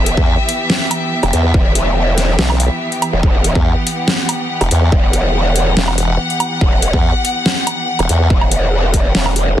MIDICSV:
0, 0, Header, 1, 5, 480
1, 0, Start_track
1, 0, Key_signature, 1, "minor"
1, 0, Tempo, 422535
1, 1752, Time_signature, 4, 2, 24, 8
1, 10906, End_track
2, 0, Start_track
2, 0, Title_t, "String section"
2, 0, Program_c, 0, 48
2, 0, Note_on_c, 0, 52, 89
2, 0, Note_on_c, 0, 59, 80
2, 0, Note_on_c, 0, 67, 79
2, 0, Note_on_c, 0, 76, 94
2, 3652, Note_off_c, 0, 76, 0
2, 3672, Note_on_c, 0, 78, 102
2, 10906, Note_off_c, 0, 52, 0
2, 10906, Note_off_c, 0, 59, 0
2, 10906, Note_off_c, 0, 67, 0
2, 10906, Note_off_c, 0, 78, 0
2, 10906, End_track
3, 0, Start_track
3, 0, Title_t, "Wobble bass"
3, 0, Program_c, 1, 39
3, 197, Note_on_c, 1, 40, 98
3, 417, Note_off_c, 1, 40, 0
3, 1398, Note_on_c, 1, 28, 101
3, 1494, Note_off_c, 1, 28, 0
3, 1513, Note_on_c, 1, 40, 95
3, 1734, Note_off_c, 1, 40, 0
3, 2712, Note_on_c, 1, 35, 95
3, 3057, Note_off_c, 1, 35, 0
3, 4037, Note_on_c, 1, 40, 100
3, 4257, Note_off_c, 1, 40, 0
3, 5237, Note_on_c, 1, 28, 99
3, 5333, Note_off_c, 1, 28, 0
3, 5352, Note_on_c, 1, 40, 96
3, 5574, Note_off_c, 1, 40, 0
3, 6552, Note_on_c, 1, 28, 97
3, 7013, Note_off_c, 1, 28, 0
3, 7877, Note_on_c, 1, 40, 101
3, 8097, Note_off_c, 1, 40, 0
3, 9078, Note_on_c, 1, 28, 98
3, 9174, Note_off_c, 1, 28, 0
3, 9192, Note_on_c, 1, 40, 100
3, 9414, Note_off_c, 1, 40, 0
3, 10906, End_track
4, 0, Start_track
4, 0, Title_t, "Wobble bass"
4, 0, Program_c, 2, 39
4, 0, Note_on_c, 2, 28, 101
4, 177, Note_off_c, 2, 28, 0
4, 1752, Note_on_c, 2, 28, 100
4, 2693, Note_off_c, 2, 28, 0
4, 3557, Note_on_c, 2, 28, 102
4, 3653, Note_off_c, 2, 28, 0
4, 3671, Note_on_c, 2, 28, 96
4, 4017, Note_off_c, 2, 28, 0
4, 5592, Note_on_c, 2, 28, 97
4, 6533, Note_off_c, 2, 28, 0
4, 7512, Note_on_c, 2, 28, 101
4, 7857, Note_off_c, 2, 28, 0
4, 9432, Note_on_c, 2, 28, 102
4, 10374, Note_off_c, 2, 28, 0
4, 10392, Note_on_c, 2, 28, 99
4, 10854, Note_off_c, 2, 28, 0
4, 10906, End_track
5, 0, Start_track
5, 0, Title_t, "Drums"
5, 72, Note_on_c, 9, 42, 82
5, 186, Note_off_c, 9, 42, 0
5, 197, Note_on_c, 9, 36, 117
5, 311, Note_off_c, 9, 36, 0
5, 553, Note_on_c, 9, 42, 86
5, 666, Note_off_c, 9, 42, 0
5, 792, Note_on_c, 9, 38, 125
5, 906, Note_off_c, 9, 38, 0
5, 1033, Note_on_c, 9, 42, 83
5, 1033, Note_on_c, 9, 77, 53
5, 1146, Note_off_c, 9, 42, 0
5, 1146, Note_off_c, 9, 77, 0
5, 1398, Note_on_c, 9, 42, 37
5, 1398, Note_on_c, 9, 77, 52
5, 1512, Note_off_c, 9, 42, 0
5, 1512, Note_off_c, 9, 77, 0
5, 1513, Note_on_c, 9, 42, 82
5, 1626, Note_off_c, 9, 42, 0
5, 1752, Note_on_c, 9, 36, 127
5, 1866, Note_off_c, 9, 36, 0
5, 1992, Note_on_c, 9, 42, 77
5, 2106, Note_off_c, 9, 42, 0
5, 2473, Note_on_c, 9, 38, 39
5, 2473, Note_on_c, 9, 42, 78
5, 2586, Note_off_c, 9, 38, 0
5, 2586, Note_off_c, 9, 42, 0
5, 2712, Note_on_c, 9, 38, 122
5, 2825, Note_off_c, 9, 38, 0
5, 2838, Note_on_c, 9, 77, 81
5, 2951, Note_off_c, 9, 77, 0
5, 2952, Note_on_c, 9, 42, 82
5, 3066, Note_off_c, 9, 42, 0
5, 3317, Note_on_c, 9, 42, 36
5, 3431, Note_off_c, 9, 42, 0
5, 3432, Note_on_c, 9, 42, 78
5, 3432, Note_on_c, 9, 77, 77
5, 3546, Note_off_c, 9, 42, 0
5, 3546, Note_off_c, 9, 77, 0
5, 3671, Note_on_c, 9, 36, 119
5, 3785, Note_off_c, 9, 36, 0
5, 3912, Note_on_c, 9, 42, 77
5, 4026, Note_off_c, 9, 42, 0
5, 4037, Note_on_c, 9, 36, 110
5, 4151, Note_off_c, 9, 36, 0
5, 4392, Note_on_c, 9, 42, 82
5, 4506, Note_off_c, 9, 42, 0
5, 4631, Note_on_c, 9, 38, 123
5, 4745, Note_off_c, 9, 38, 0
5, 4872, Note_on_c, 9, 42, 79
5, 4872, Note_on_c, 9, 77, 50
5, 4985, Note_off_c, 9, 42, 0
5, 4985, Note_off_c, 9, 77, 0
5, 5237, Note_on_c, 9, 42, 35
5, 5237, Note_on_c, 9, 77, 49
5, 5351, Note_off_c, 9, 42, 0
5, 5351, Note_off_c, 9, 77, 0
5, 5352, Note_on_c, 9, 42, 79
5, 5466, Note_off_c, 9, 42, 0
5, 5592, Note_on_c, 9, 36, 117
5, 5705, Note_off_c, 9, 36, 0
5, 5832, Note_on_c, 9, 42, 79
5, 5945, Note_off_c, 9, 42, 0
5, 6312, Note_on_c, 9, 42, 75
5, 6425, Note_off_c, 9, 42, 0
5, 6552, Note_on_c, 9, 38, 121
5, 6666, Note_off_c, 9, 38, 0
5, 6678, Note_on_c, 9, 77, 83
5, 6792, Note_off_c, 9, 77, 0
5, 6792, Note_on_c, 9, 42, 76
5, 6906, Note_off_c, 9, 42, 0
5, 7158, Note_on_c, 9, 42, 35
5, 7272, Note_off_c, 9, 42, 0
5, 7272, Note_on_c, 9, 42, 77
5, 7272, Note_on_c, 9, 77, 81
5, 7385, Note_off_c, 9, 42, 0
5, 7385, Note_off_c, 9, 77, 0
5, 7512, Note_on_c, 9, 36, 124
5, 7625, Note_off_c, 9, 36, 0
5, 7752, Note_on_c, 9, 42, 79
5, 7866, Note_off_c, 9, 42, 0
5, 7877, Note_on_c, 9, 36, 106
5, 7991, Note_off_c, 9, 36, 0
5, 8232, Note_on_c, 9, 42, 78
5, 8346, Note_off_c, 9, 42, 0
5, 8472, Note_on_c, 9, 38, 117
5, 8586, Note_off_c, 9, 38, 0
5, 8713, Note_on_c, 9, 42, 78
5, 8713, Note_on_c, 9, 77, 56
5, 8826, Note_off_c, 9, 42, 0
5, 8826, Note_off_c, 9, 77, 0
5, 9078, Note_on_c, 9, 42, 37
5, 9078, Note_on_c, 9, 77, 55
5, 9192, Note_off_c, 9, 42, 0
5, 9192, Note_off_c, 9, 77, 0
5, 9193, Note_on_c, 9, 42, 83
5, 9306, Note_off_c, 9, 42, 0
5, 9432, Note_on_c, 9, 36, 119
5, 9545, Note_off_c, 9, 36, 0
5, 9558, Note_on_c, 9, 77, 68
5, 9672, Note_off_c, 9, 77, 0
5, 9673, Note_on_c, 9, 42, 82
5, 9787, Note_off_c, 9, 42, 0
5, 10152, Note_on_c, 9, 36, 59
5, 10153, Note_on_c, 9, 42, 80
5, 10265, Note_off_c, 9, 36, 0
5, 10266, Note_off_c, 9, 42, 0
5, 10392, Note_on_c, 9, 38, 116
5, 10506, Note_off_c, 9, 38, 0
5, 10518, Note_on_c, 9, 77, 90
5, 10632, Note_off_c, 9, 77, 0
5, 10633, Note_on_c, 9, 42, 83
5, 10747, Note_off_c, 9, 42, 0
5, 10906, End_track
0, 0, End_of_file